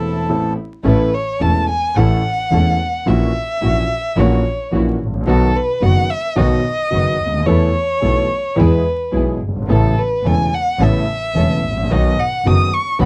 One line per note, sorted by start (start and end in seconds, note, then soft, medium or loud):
0.00 0.25 E1 medium
0.00 0.25 E2 medium
0.00 0.24 E3 medium
0.00 0.24 A3 soft
0.00 0.25 C4 soft
0.00 0.53 E4 medium
0.00 0.26 A4 medium
0.00 0.53 A4 medium
0.29 0.53 A1 medium
0.29 0.53 A2 medium
0.29 0.53 E3 medium
0.29 0.53 A3 soft
0.29 0.53 C4 soft
0.29 0.53 A4 medium
0.84 1.08 A1 medium
0.84 1.08 A2 medium
0.84 1.08 E3 medium
0.84 1.08 A3 medium
0.84 1.08 C#4 medium
0.84 1.08 E4 medium
0.84 1.08 A4 medium
0.84 1.09 A4 medium
0.84 1.15 B4 medium
1.14 1.43 C#5 medium
1.40 1.64 E1 medium
1.40 1.64 E1 soft
1.40 1.64 E2 soft
1.40 1.64 E3 soft
1.40 1.64 A3 soft
1.40 1.64 C#4 soft
1.40 1.65 E4 soft
1.40 1.64 A4 soft
1.40 1.65 A4 medium
1.40 1.68 A5 medium
1.68 1.98 G#5 medium
1.96 2.19 A1 medium
1.96 2.20 A1 medium
1.96 2.20 A2 medium
1.96 2.20 E3 medium
1.96 2.20 A3 medium
1.96 2.20 C#4 medium
1.96 2.20 E4 medium
1.96 2.20 A4 medium
1.96 3.09 F#5 medium
2.51 2.75 E1 medium
2.51 2.74 E2 medium
2.51 2.74 E3 soft
2.51 2.74 A3 soft
2.51 2.75 C#4 soft
2.51 2.75 E4 soft
2.51 2.75 A4 soft
2.51 2.75 A4 medium
3.06 3.30 A#1 medium
3.06 3.30 A#2 medium
3.06 3.30 E3 medium
3.06 3.30 A#3 medium
3.06 3.30 C#4 medium
3.06 3.30 E4 medium
3.06 3.30 F#4 medium
3.06 4.21 E5 medium
3.61 3.85 A#1 soft
3.61 3.85 A#1 medium
3.61 3.85 A#2 medium
3.61 3.85 E3 soft
3.61 3.85 A#3 soft
3.61 3.85 C#4 soft
3.61 3.85 E4 soft
3.61 3.85 F#4 soft
3.61 3.85 F#4 medium
4.17 4.40 A#1 medium
4.17 4.41 A#2 medium
4.17 4.40 E3 medium
4.17 4.40 A#3 medium
4.17 4.41 A#3 medium
4.17 4.41 C#4 medium
4.17 4.40 E4 medium
4.17 4.41 F#4 medium
4.17 4.73 C#5 medium
4.72 4.95 A#1 medium
4.72 4.95 A#2 medium
4.72 4.95 E3 soft
4.72 4.95 A#3 soft
4.72 4.95 C#4 soft
4.72 4.95 E4 soft
4.72 4.95 F#4 medium
4.72 4.96 F#4 medium
4.99 5.26 A1 medium
5.06 5.13 G#1 soft
5.14 5.20 A1 medium
5.21 5.27 A#1 medium
5.26 5.50 B1 medium
5.26 5.50 B2 medium
5.26 5.50 D#3 medium
5.26 5.50 F#3 medium
5.26 5.50 B3 medium
5.26 5.50 D#4 medium
5.26 5.50 F#4 medium
5.26 5.57 A4 medium
5.56 5.84 B4 medium
5.81 6.05 F#1 soft
5.81 6.05 F#1 medium
5.81 6.05 F#2 medium
5.81 6.05 D#3 soft
5.81 6.05 F#3 soft
5.81 6.05 B3 soft
5.81 6.05 D#4 soft
5.81 6.05 F#4 soft
5.81 6.11 F#5 loud
6.10 6.37 E5 medium
6.35 6.60 B1 medium
6.35 6.59 B2 medium
6.35 6.59 D#3 medium
6.35 6.60 F#3 medium
6.35 6.60 B3 medium
6.35 6.60 D#4 medium
6.35 6.60 F#4 medium
6.35 7.48 D#5 loud
6.90 7.15 F#1 medium
6.90 7.15 F#2 medium
6.90 7.14 D#3 soft
6.90 7.14 F#3 soft
6.90 7.15 B3 soft
6.90 7.15 D#4 soft
6.90 7.15 F#4 medium
7.20 7.46 D2 medium
7.26 7.33 C#2 soft
7.33 7.40 D2 medium
7.40 7.47 D#2 medium
7.46 7.70 E2 medium
7.46 7.70 E3 medium
7.46 7.70 A3 medium
7.46 7.70 B3 medium
7.46 7.70 E4 medium
7.46 7.70 A4 medium
7.46 8.60 C#5 medium
8.01 8.25 B1 medium
8.01 8.25 B2 soft
8.01 8.25 E3 soft
8.01 8.25 A3 soft
8.01 8.25 B3 soft
8.01 8.25 E4 soft
8.01 8.25 A4 soft
8.56 8.80 E2 medium
8.56 8.80 E3 medium
8.56 8.80 G#3 medium
8.56 8.80 B3 medium
8.56 8.81 E4 medium
8.56 8.80 G#4 medium
8.56 8.81 G#4 medium
8.56 9.13 B4 medium
9.12 9.36 B1 medium
9.12 9.36 B2 soft
9.12 9.36 E3 soft
9.12 9.36 G#3 soft
9.12 9.36 B3 soft
9.12 9.36 E4 soft
9.12 9.36 G#4 soft
9.40 9.67 G1 medium
9.48 9.55 F#1 soft
9.56 9.62 G1 soft
9.62 9.69 G#1 medium
9.67 9.91 A1 medium
9.67 9.92 A1 medium
9.67 9.92 A2 medium
9.67 9.92 C#3 medium
9.67 9.92 A3 medium
9.67 9.92 B3 medium
9.67 9.92 C#4 medium
9.67 9.92 E4 medium
9.67 9.92 A4 medium
9.72 9.99 A4 medium
9.98 10.28 B4 medium
10.24 10.47 E1 medium
10.24 10.48 E1 medium
10.24 10.48 E2 soft
10.24 10.48 C#3 soft
10.24 10.48 A3 soft
10.24 10.47 B3 soft
10.24 10.48 B3 soft
10.24 10.47 C#4 soft
10.24 10.48 E4 soft
10.24 10.47 A4 soft
10.24 10.56 G#5 medium
10.54 10.84 F#5 medium
10.79 11.02 A1 medium
10.79 11.03 A1 medium
10.79 11.03 A2 medium
10.79 11.03 C#3 medium
10.79 11.03 A3 medium
10.79 11.03 B3 medium
10.79 11.03 C#4 medium
10.79 11.03 E4 medium
10.79 11.03 A4 medium
10.79 11.93 E5 medium
11.34 11.58 E1 medium
11.34 11.58 E2 medium
11.34 11.58 C#3 soft
11.34 11.58 A3 soft
11.34 11.58 B3 soft
11.34 11.59 B3 soft
11.34 11.58 C#4 soft
11.34 11.59 E4 soft
11.34 11.59 A4 medium
11.63 11.89 A1 medium
11.71 11.77 G#1 soft
11.77 11.84 A1 medium
11.84 11.90 A#1 medium
11.90 12.13 B1 medium
11.90 12.13 B2 medium
11.90 12.13 D#3 medium
11.90 12.14 F#3 medium
11.90 12.13 B3 medium
11.90 12.14 D#4 medium
11.90 12.14 F#4 medium
11.90 12.21 D#5 medium
12.20 12.48 F#5 loud
12.45 12.68 F#1 medium
12.45 12.69 F#2 medium
12.45 12.68 D#3 soft
12.45 12.68 F#3 soft
12.45 12.68 B3 soft
12.45 12.68 D#4 soft
12.45 12.68 F#4 medium
12.45 12.69 F#4 medium
12.45 12.75 D#6 loud
12.73 13.00 C#6 medium
12.99 13.05 B1 medium
12.99 13.05 B2 medium
12.99 13.05 D#3 medium
12.99 13.05 F#3 medium
12.99 13.05 B3 medium
12.99 13.05 D#4 medium
12.99 13.05 F#4 medium
12.99 13.05 B5 loud